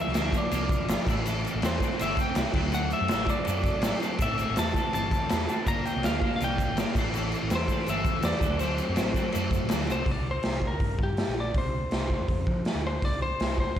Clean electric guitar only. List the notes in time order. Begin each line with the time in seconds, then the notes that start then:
Already playing: F3 A#3 D4
0.15 F3 A#3 D4
0.34 F3 A#3 D4
0.51 F3 A#3 D4
0.89 F3 A#3 D4
1.08 E3 A3 C4
1.26 E3 A3 C4
1.62 E3 A3 C4
1.81 E3 A3 C4
2.00 E3 A3 C4
2.36 E3 A3 C4
2.55 F#3 A3 C4
2.72 F#3 A3 C4
3.09 F#3 A3 C4
3.28 F#3 A3 C4
3.46 F#3 A3 C4
3.83 F#3 A3 C4
4.01 F#3 A3 C4
4.20 E3 A3 C4
4.57 E3 A3 C4
4.76 E3 A3 C4
4.93 E3 A3 C4
5.30 E3 A3 C4
5.49 E3 A3 C4
5.68 F3 A#3 D4
6.04 F3 A#3 D4
6.24 F3 A#3 D4
6.42 F3 A#3 D4
6.78 F3 A#3 D4
6.98 E3 A3 C4
7.15 E3 A3 C4
7.52 E3 A3 C4
7.70 E3 A3 C4
7.89 E3 A3 C4
8.24 E3 A3 C4
8.42 F#3 A3 C4
8.61 F#3 A3 C4
8.97 F#3 A3 C4
9.15 F#3 A3 C4
9.33 F#3 A3 C4
9.69 F#3 A3 C4
9.87 F#3 A3 C4